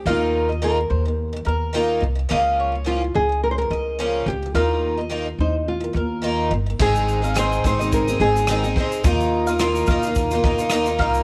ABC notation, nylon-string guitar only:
X:1
M:4/4
L:1/16
Q:"Swing 16ths" 1/4=107
K:Ab
V:1 name="Nylon-string guitar"
F4 B6 z6 | z4 F2 A2 B/2 c/2 B4- B G2 | F6 E2 F6 z2 | A4 c2 c2 B2 A6 |
F4 F8 z4 |]